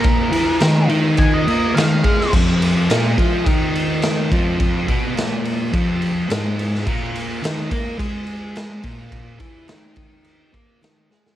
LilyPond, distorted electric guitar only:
\new Staff \with { instrumentName = "Distorted electric guitar" } { \clef bass \time 4/4 \key bes \major \tempo 4 = 106 <bes, bes>8 <e e'>8 <ees ees'>8 <ees ees'>4 <bes bes'>8 <ees ees'>8 <aes aes'>8 | <f, f>4 <bes, bes>8 <f f'>8 <ees ees'>4. <f, f>8~ | <f, f>8 <ces ces'>8 <bes, bes>4 <f, f>4 <aes, aes>4 | <bes, bes>4 <ees ees'>8 <bes bes'>8 <aes aes'>4. <bes, bes>8~ |
<bes, bes>8 <e e'>8 <ees ees'>8 <ees ees'>4 <bes bes'>8 <ees ees'>8 <aes aes'>8 | }